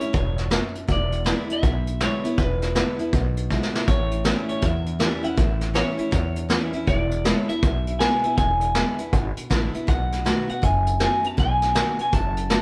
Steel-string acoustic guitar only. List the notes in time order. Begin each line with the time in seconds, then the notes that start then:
Already playing: A2
0.00 C#4 E4
0.13 G2
0.50 F#2
0.87 E2
1.24 D3 G#3 B3 E4
1.49 B3 E4
1.63 B2
2.00 D3 G#3 B3 E4
2.24 B3 E4
2.38 E2
2.75 D3 G#3 B3 E4
2.99 B3 E4
3.13 B2
3.50 D3 G#3 B3 E4
3.74 B3 E4
3.88 A2
4.24 E3 G3 C#4 E4
4.62 E2
4.99 E3 G3 C#4 E4
5.23 C#4 E4
5.37 A2
5.74 E3 G3 C#4 E4
5.97 C#4 E4
6.11 E2
6.49 E3 G3 C#4 E4
6.73 C#4 E4
6.87 E2
7.25 D3 G#3 B3 E4
7.49 B3 E4
7.63 B2
8.01 D3 G#3 B3 E4
8.24 B3 E4
8.38 E2
8.75 D3 G#3 B3 E4
8.99 B3 E4
9.14 B2
9.50 D3 G#3 B3 E4
9.73 B3 E4
9.87 B2
10.25 D#3 A3 B3 F#4
10.48 B3 F#4
10.62 F#2
10.99 D#3 A3 B3 F#4
11.23 B3 F#4
11.37 B2
11.75 D#3 A3 B3 F#4
11.99 B3 F#4
12.12 F#2
12.49 D#3 A3 B3 F#4